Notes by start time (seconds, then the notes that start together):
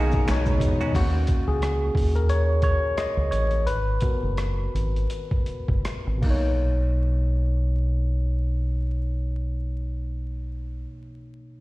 Already playing: B2 D#3 A#3 B3 C#4 D#4 F#4 A#4 C#5
0.00 G#4
0.12 kick, maracas
0.27 B1 B2 G#3 B3 D#4 C#5, finger snap, snare, closed hi-hat, maracas
0.46 C#2, kick, maracas
0.60 E2, kick, closed hi-hat, maracas
0.81 D#3 G#3 C#4 F#4, maracas
0.95 D#2 A#3 C#4 F#4, kick, closed hi-hat, crash
1.27 kick, closed hi-hat
1.47 C#2 G#4
1.62 cross-stick, closed hi-hat
1.95 D#2, kick, open hi-hat
2.15 A#4, closed hi-hat
2.29 C#5, closed hi-hat
2.62 C#5, kick, closed hi-hat
2.97 D#5, cross-stick, closed hi-hat
3.17 C#2
3.31 A1 C#5, closed hi-hat
3.51 closed hi-hat
3.66 G#1 B4, closed hi-hat
4.00 B3 F#4 A#4, kick, closed hi-hat
4.22 F#1
4.37 cross-stick, closed hi-hat
4.74 G#1, closed hi-hat
4.96 closed hi-hat
5.10 closed hi-hat
5.31 kick
5.46 muted fingered electric bass stroke, closed hi-hat
5.68 F#1, kick
5.85 cross-stick, closed hi-hat
6.07 G#1
6.18 B2 A#3
6.23 B1 D#4, kick, crash
6.31 C#5